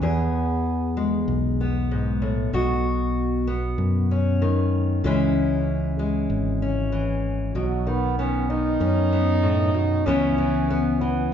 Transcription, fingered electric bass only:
0.02 1.24 E2 medium
1.28 2.49 B1 medium
2.53 3.75 B1 medium
3.78 5.00 F#2 medium
5.04 6.26 C#2 medium
6.30 7.51 G#1 medium
7.55 8.77 B1 medium
8.80 10.02 F#2 medium
10.07 11.28 C#2 medium

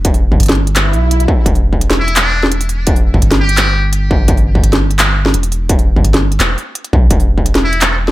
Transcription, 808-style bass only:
0.00 0.30 E1 medium
0.32 0.39 G1 medium
0.40 0.94 G1 loud
0.93 1.27 B1 medium
1.46 3.13 E1 loud
3.14 3.22 G1 medium
3.23 4.54 G1 loud
4.55 4.63 G1 medium
4.63 5.33 G1 loud
5.34 5.95 E1 medium
5.96 6.04 G1 medium
6.05 6.39 G1 loud
6.40 6.56 E1 medium
6.93 7.09 B1 loud
7.11 8.11 E1 loud

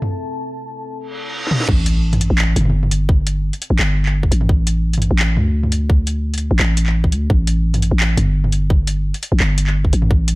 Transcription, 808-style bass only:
1.69 2.29 A1 loud
2.30 2.55 A1 loud
2.56 3.52 G1 loud
3.70 3.78 A1 loud
3.79 4.31 G1 medium
4.31 5.10 A1 loud
5.11 5.38 A1 loud
5.37 6.50 D2 loud
6.51 6.59 A1 loud
6.59 7.14 A1 loud
7.12 7.28 D2 loud
7.30 7.90 A1 loud
7.91 8.16 A1 loud
8.17 9.13 G1 loud
9.32 9.40 A1 loud
9.40 9.92 G1 medium
9.93 10.35 A1 loud

